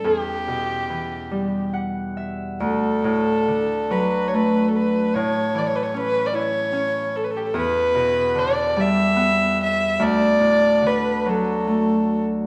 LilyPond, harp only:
<<
  \new Staff \with { instrumentName = "Harp" } { \time 6/8 \key d \major \tempo 4. = 48 r2 fis''8 e''8 | r2. | r2. | r2. |
r2. | }
  \new Staff \with { instrumentName = "Harp" } { \clef bass \time 6/8 \key d \major e,8 b,8 e8 g4. | d,8 a,8 d8 fis8 a4 | a,8 e8 cis'8 e'8 cis'4 | e,8 b,8 d8 g8 b4 |
d,8 a,8 d8 fis8 a4 | }
>>